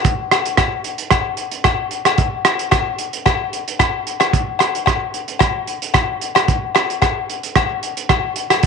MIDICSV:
0, 0, Header, 1, 2, 480
1, 0, Start_track
1, 0, Tempo, 536673
1, 525, Time_signature, 4, 2, 24, 8
1, 7751, End_track
2, 0, Start_track
2, 0, Title_t, "Drums"
2, 42, Note_on_c, 9, 42, 43
2, 43, Note_on_c, 9, 36, 80
2, 131, Note_off_c, 9, 42, 0
2, 133, Note_off_c, 9, 36, 0
2, 281, Note_on_c, 9, 37, 60
2, 281, Note_on_c, 9, 42, 45
2, 287, Note_on_c, 9, 68, 59
2, 371, Note_off_c, 9, 37, 0
2, 371, Note_off_c, 9, 42, 0
2, 376, Note_off_c, 9, 68, 0
2, 407, Note_on_c, 9, 42, 42
2, 497, Note_off_c, 9, 42, 0
2, 513, Note_on_c, 9, 37, 65
2, 513, Note_on_c, 9, 42, 44
2, 518, Note_on_c, 9, 68, 53
2, 519, Note_on_c, 9, 36, 74
2, 603, Note_off_c, 9, 37, 0
2, 603, Note_off_c, 9, 42, 0
2, 608, Note_off_c, 9, 68, 0
2, 609, Note_off_c, 9, 36, 0
2, 754, Note_on_c, 9, 42, 43
2, 844, Note_off_c, 9, 42, 0
2, 878, Note_on_c, 9, 42, 43
2, 968, Note_off_c, 9, 42, 0
2, 988, Note_on_c, 9, 37, 65
2, 988, Note_on_c, 9, 42, 44
2, 996, Note_on_c, 9, 36, 82
2, 996, Note_on_c, 9, 68, 57
2, 1078, Note_off_c, 9, 37, 0
2, 1078, Note_off_c, 9, 42, 0
2, 1085, Note_off_c, 9, 36, 0
2, 1086, Note_off_c, 9, 68, 0
2, 1226, Note_on_c, 9, 42, 42
2, 1315, Note_off_c, 9, 42, 0
2, 1355, Note_on_c, 9, 42, 40
2, 1444, Note_off_c, 9, 42, 0
2, 1468, Note_on_c, 9, 37, 62
2, 1468, Note_on_c, 9, 42, 43
2, 1473, Note_on_c, 9, 36, 83
2, 1473, Note_on_c, 9, 68, 55
2, 1558, Note_off_c, 9, 37, 0
2, 1558, Note_off_c, 9, 42, 0
2, 1563, Note_off_c, 9, 36, 0
2, 1563, Note_off_c, 9, 68, 0
2, 1707, Note_on_c, 9, 42, 41
2, 1797, Note_off_c, 9, 42, 0
2, 1836, Note_on_c, 9, 37, 60
2, 1836, Note_on_c, 9, 42, 42
2, 1845, Note_on_c, 9, 68, 60
2, 1926, Note_off_c, 9, 37, 0
2, 1926, Note_off_c, 9, 42, 0
2, 1935, Note_off_c, 9, 68, 0
2, 1949, Note_on_c, 9, 42, 43
2, 1953, Note_on_c, 9, 36, 75
2, 2038, Note_off_c, 9, 42, 0
2, 2042, Note_off_c, 9, 36, 0
2, 2190, Note_on_c, 9, 37, 65
2, 2190, Note_on_c, 9, 42, 46
2, 2193, Note_on_c, 9, 68, 62
2, 2279, Note_off_c, 9, 37, 0
2, 2279, Note_off_c, 9, 42, 0
2, 2283, Note_off_c, 9, 68, 0
2, 2319, Note_on_c, 9, 42, 43
2, 2408, Note_off_c, 9, 42, 0
2, 2427, Note_on_c, 9, 68, 54
2, 2431, Note_on_c, 9, 37, 61
2, 2431, Note_on_c, 9, 42, 47
2, 2434, Note_on_c, 9, 36, 84
2, 2516, Note_off_c, 9, 68, 0
2, 2520, Note_off_c, 9, 37, 0
2, 2520, Note_off_c, 9, 42, 0
2, 2524, Note_off_c, 9, 36, 0
2, 2670, Note_on_c, 9, 42, 45
2, 2760, Note_off_c, 9, 42, 0
2, 2801, Note_on_c, 9, 42, 44
2, 2891, Note_off_c, 9, 42, 0
2, 2913, Note_on_c, 9, 68, 58
2, 2916, Note_on_c, 9, 37, 64
2, 2916, Note_on_c, 9, 42, 45
2, 2917, Note_on_c, 9, 36, 79
2, 3002, Note_off_c, 9, 68, 0
2, 3006, Note_off_c, 9, 37, 0
2, 3006, Note_off_c, 9, 42, 0
2, 3007, Note_off_c, 9, 36, 0
2, 3158, Note_on_c, 9, 42, 44
2, 3247, Note_off_c, 9, 42, 0
2, 3289, Note_on_c, 9, 42, 49
2, 3378, Note_off_c, 9, 42, 0
2, 3393, Note_on_c, 9, 68, 58
2, 3397, Note_on_c, 9, 36, 77
2, 3397, Note_on_c, 9, 37, 62
2, 3397, Note_on_c, 9, 42, 46
2, 3482, Note_off_c, 9, 68, 0
2, 3486, Note_off_c, 9, 36, 0
2, 3487, Note_off_c, 9, 37, 0
2, 3487, Note_off_c, 9, 42, 0
2, 3639, Note_on_c, 9, 42, 48
2, 3728, Note_off_c, 9, 42, 0
2, 3756, Note_on_c, 9, 68, 58
2, 3762, Note_on_c, 9, 37, 60
2, 3762, Note_on_c, 9, 42, 48
2, 3845, Note_off_c, 9, 68, 0
2, 3851, Note_off_c, 9, 37, 0
2, 3851, Note_off_c, 9, 42, 0
2, 3877, Note_on_c, 9, 36, 78
2, 3878, Note_on_c, 9, 42, 48
2, 3966, Note_off_c, 9, 36, 0
2, 3967, Note_off_c, 9, 42, 0
2, 4106, Note_on_c, 9, 68, 57
2, 4117, Note_on_c, 9, 37, 64
2, 4117, Note_on_c, 9, 42, 48
2, 4195, Note_off_c, 9, 68, 0
2, 4206, Note_off_c, 9, 37, 0
2, 4206, Note_off_c, 9, 42, 0
2, 4248, Note_on_c, 9, 42, 46
2, 4338, Note_off_c, 9, 42, 0
2, 4346, Note_on_c, 9, 68, 56
2, 4358, Note_on_c, 9, 36, 79
2, 4358, Note_on_c, 9, 37, 63
2, 4358, Note_on_c, 9, 42, 45
2, 4435, Note_off_c, 9, 68, 0
2, 4447, Note_off_c, 9, 36, 0
2, 4448, Note_off_c, 9, 37, 0
2, 4448, Note_off_c, 9, 42, 0
2, 4597, Note_on_c, 9, 42, 45
2, 4686, Note_off_c, 9, 42, 0
2, 4722, Note_on_c, 9, 42, 43
2, 4812, Note_off_c, 9, 42, 0
2, 4824, Note_on_c, 9, 68, 59
2, 4834, Note_on_c, 9, 37, 61
2, 4834, Note_on_c, 9, 42, 47
2, 4836, Note_on_c, 9, 36, 81
2, 4913, Note_off_c, 9, 68, 0
2, 4923, Note_off_c, 9, 37, 0
2, 4923, Note_off_c, 9, 42, 0
2, 4926, Note_off_c, 9, 36, 0
2, 5076, Note_on_c, 9, 42, 42
2, 5165, Note_off_c, 9, 42, 0
2, 5206, Note_on_c, 9, 42, 46
2, 5295, Note_off_c, 9, 42, 0
2, 5310, Note_on_c, 9, 68, 53
2, 5316, Note_on_c, 9, 37, 62
2, 5316, Note_on_c, 9, 42, 44
2, 5317, Note_on_c, 9, 36, 77
2, 5400, Note_off_c, 9, 68, 0
2, 5405, Note_off_c, 9, 37, 0
2, 5405, Note_off_c, 9, 42, 0
2, 5406, Note_off_c, 9, 36, 0
2, 5559, Note_on_c, 9, 42, 42
2, 5648, Note_off_c, 9, 42, 0
2, 5680, Note_on_c, 9, 68, 61
2, 5688, Note_on_c, 9, 37, 61
2, 5688, Note_on_c, 9, 42, 42
2, 5770, Note_off_c, 9, 68, 0
2, 5777, Note_off_c, 9, 37, 0
2, 5777, Note_off_c, 9, 42, 0
2, 5799, Note_on_c, 9, 42, 43
2, 5800, Note_on_c, 9, 36, 77
2, 5888, Note_off_c, 9, 42, 0
2, 5889, Note_off_c, 9, 36, 0
2, 6034, Note_on_c, 9, 68, 60
2, 6043, Note_on_c, 9, 37, 65
2, 6043, Note_on_c, 9, 42, 43
2, 6124, Note_off_c, 9, 68, 0
2, 6132, Note_off_c, 9, 37, 0
2, 6132, Note_off_c, 9, 42, 0
2, 6172, Note_on_c, 9, 42, 45
2, 6262, Note_off_c, 9, 42, 0
2, 6275, Note_on_c, 9, 68, 55
2, 6280, Note_on_c, 9, 36, 76
2, 6281, Note_on_c, 9, 37, 64
2, 6281, Note_on_c, 9, 42, 45
2, 6365, Note_off_c, 9, 68, 0
2, 6370, Note_off_c, 9, 36, 0
2, 6370, Note_off_c, 9, 37, 0
2, 6370, Note_off_c, 9, 42, 0
2, 6525, Note_on_c, 9, 42, 43
2, 6615, Note_off_c, 9, 42, 0
2, 6649, Note_on_c, 9, 42, 41
2, 6739, Note_off_c, 9, 42, 0
2, 6757, Note_on_c, 9, 37, 60
2, 6757, Note_on_c, 9, 42, 43
2, 6760, Note_on_c, 9, 36, 75
2, 6764, Note_on_c, 9, 68, 57
2, 6847, Note_off_c, 9, 37, 0
2, 6847, Note_off_c, 9, 42, 0
2, 6849, Note_off_c, 9, 36, 0
2, 6853, Note_off_c, 9, 68, 0
2, 7001, Note_on_c, 9, 42, 46
2, 7091, Note_off_c, 9, 42, 0
2, 7128, Note_on_c, 9, 42, 48
2, 7217, Note_off_c, 9, 42, 0
2, 7238, Note_on_c, 9, 37, 61
2, 7238, Note_on_c, 9, 42, 46
2, 7241, Note_on_c, 9, 36, 81
2, 7243, Note_on_c, 9, 68, 60
2, 7328, Note_off_c, 9, 37, 0
2, 7328, Note_off_c, 9, 42, 0
2, 7330, Note_off_c, 9, 36, 0
2, 7332, Note_off_c, 9, 68, 0
2, 7475, Note_on_c, 9, 42, 49
2, 7565, Note_off_c, 9, 42, 0
2, 7605, Note_on_c, 9, 37, 57
2, 7605, Note_on_c, 9, 42, 46
2, 7606, Note_on_c, 9, 68, 62
2, 7695, Note_off_c, 9, 37, 0
2, 7695, Note_off_c, 9, 42, 0
2, 7696, Note_off_c, 9, 68, 0
2, 7717, Note_on_c, 9, 42, 43
2, 7723, Note_on_c, 9, 36, 77
2, 7751, Note_off_c, 9, 36, 0
2, 7751, Note_off_c, 9, 42, 0
2, 7751, End_track
0, 0, End_of_file